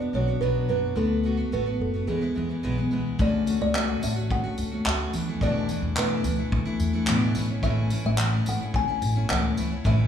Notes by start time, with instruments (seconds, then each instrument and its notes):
Already playing: kalimba D5
0.00 steel-string acoustic guitar B3 D4 F#4
0.13 upright bass B1, steel-string acoustic guitar F#3 B3 D4 F#4, kalimba C#5
0.28 steel-string acoustic guitar B3 D4 F#4
0.41 upright bass B1, steel-string acoustic guitar B2 F#3 B3 D4 F#4, kalimba B4
0.68 upright bass F#1, steel-string acoustic guitar F#3 B3 D4 F#4, kalimba B4
0.95 upright bass D2, steel-string acoustic guitar D3 A3 B3 F#4, kalimba A4
1.23 steel-string acoustic guitar D3 A3 B3 F#4
1.37 steel-string acoustic guitar A3 B3 F#4
1.52 upright bass A1, steel-string acoustic guitar D3 A3 B3 F#4, kalimba B4
1.66 steel-string acoustic guitar A3 B3 F#4
1.80 upright bass F#1, kalimba A4
1.94 steel-string acoustic guitar A3 B3 F#4
2.07 steel-string acoustic guitar E2 B2 E3 G#3 B3 E4, upright bass E2, kalimba G#4
2.21 steel-string acoustic guitar E3 G#3 B3 E4
2.35 upright bass E2, steel-string acoustic guitar E3 G#3 B3 E4
2.49 steel-string acoustic guitar E3 G#3 B3 E4
2.63 upright bass B1, steel-string acoustic guitar E2 B2 E3 G#3 B3 E4
2.77 steel-string acoustic guitar E3 G#3 B3 E4
2.91 upright bass C#2, steel-string acoustic guitar E3 G#3 B3 E4
3.19 upright bass D2, steel-string acoustic guitar D3 A3 C#4 F#4, kalimba D5, kick
3.46 steel-string acoustic guitar D3 A3 C#4 F#4, tambourine
3.61 upright bass C#2, kalimba D5
3.74 steel-string acoustic guitar D3 A3 C#4 F#4, clap
4.02 upright bass A1, steel-string acoustic guitar D3 A3 C#4 F#4, kalimba E5, tambourine
4.16 steel-string acoustic guitar A3 C#4 F#4
4.31 kalimba F#5, kick
4.44 steel-string acoustic guitar A3 C#4 F#4
4.58 upright bass D2, tambourine
4.71 steel-string acoustic guitar A3 C#4 F#4
4.86 upright bass D2, steel-string acoustic guitar D3 A3 C#4 F#4, kalimba E5, clap
5.13 upright bass E2, steel-string acoustic guitar E3 A3 D4 E4, tambourine
5.28 steel-string acoustic guitar E3 A3 D4 E4
5.41 steel-string acoustic guitar E2 B2 E3 A3 D4 E4, kalimba D5, kick
5.69 steel-string acoustic guitar E3 A3 D4 E4, tambourine
5.82 upright bass E2
5.97 steel-string acoustic guitar E2 B2 E3 A3 D4 E4, kalimba B4, clap
6.24 upright bass D2, steel-string acoustic guitar E3 A3 D4 E4, tambourine
6.38 steel-string acoustic guitar E3 A3 D4 E4
6.52 kick
6.65 steel-string acoustic guitar E3 A3 D4 E4
6.80 upright bass E2, tambourine
6.93 steel-string acoustic guitar E3 A3 D4 E4
7.07 steel-string acoustic guitar E2 B2 E3 A3 D4 E4, upright bass A2, clap
7.35 upright bass A1, steel-string acoustic guitar E3 A3 C#4 E4, tambourine
7.49 steel-string acoustic guitar A3 C#4 E4
7.63 steel-string acoustic guitar A2 E3 A3 C#4 E4, kalimba E5, kick
7.90 steel-string acoustic guitar E3 A3 C#4 E4, tambourine
8.04 upright bass A1, kalimba E5
8.18 steel-string acoustic guitar A2 E3 A3 C#4 E4, clap
8.46 upright bass G#1, steel-string acoustic guitar E3 A3 C#4 E4, kalimba F#5, tambourine
8.61 steel-string acoustic guitar A3 C#4 E4
8.74 kalimba G#5, kick
8.88 steel-string acoustic guitar A3 C#4 E4
9.02 upright bass A1, tambourine
9.15 steel-string acoustic guitar A3 C#4 E4
9.29 upright bass C#2, steel-string acoustic guitar A2 E3 A3 C#4 E4, kalimba F#5, clap
9.57 upright bass C#2, steel-string acoustic guitar E3 A3 C#4 E4, tambourine
9.71 steel-string acoustic guitar A3 C#4 E4
9.84 upright bass A1, steel-string acoustic guitar A2 E3 A3 C#4 E4, kalimba E5, kick